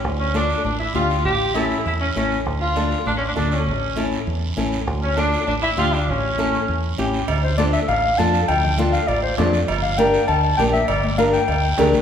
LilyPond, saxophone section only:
\new Staff \with { instrumentName = "Saxophone section" } { \time 4/4 \key d \minor \tempo 4 = 199 r8 cis'8 d'4 d'8 e'8 f'4 | g'4 e'4 e'8 cis'8 cis'8. r16 | r8 f'4. \tuplet 3/2 { d'8 cis'8 d'8 } d'8 cis'8~ | cis'4. r2 r8 |
r8 cis'8 d'4 d'8 e'8 f'8 d'8 | cis'2. r4 | r1 | r1 |
r1 | r1 | }